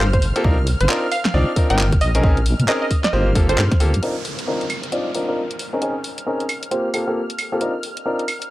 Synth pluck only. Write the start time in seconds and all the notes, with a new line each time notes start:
0.13 C5
0.81 C5
1.12 F5
1.70 G5
2.01 D#5
2.68 D#5
2.82 D#5
3.04 D#5
3.49 C5